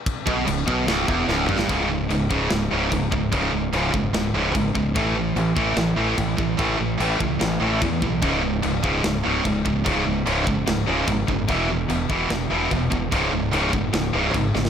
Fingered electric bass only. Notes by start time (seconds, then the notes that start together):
0.27 B1
0.48 C#1
0.68 B1
0.88 C#1
1.08 E1
1.29 C#1
1.49 G1
1.70 C#1
2.10 C#1
2.31 C#1
2.51 C#1
2.72 C#1
2.92 C#1
3.12 C#1
3.33 C#1
3.53 C#1
3.73 C#1
3.94 F#1
4.14 C#1
4.34 C#1
4.55 G#1
4.75 C#1
4.96 A1
5.36 A1
5.57 A1
5.77 A1
5.97 A1
6.18 A1
6.39 A1
6.59 A1
6.79 A1
7.00 A1
7.21 C#2
7.42 A1
7.62 A1
7.82 E2
8.03 B1
8.23 C#1
8.64 C#1
8.84 C#1
9.05 C#1
9.26 C#1
9.45 C#1
9.66 C#1
9.86 C#1
10.06 C#1
10.27 C#1
10.47 F#1
10.67 C#1
10.88 C#1
11.08 G#1
11.28 F#1
11.49 E1
11.89 E1
12.10 E1
12.30 E1
12.51 E1
12.72 E1
12.92 E1
13.12 C#1
13.33 C#1
13.53 C#1
13.73 F#1
13.93 C#1
14.14 C#1
14.34 G#1
14.55 G#1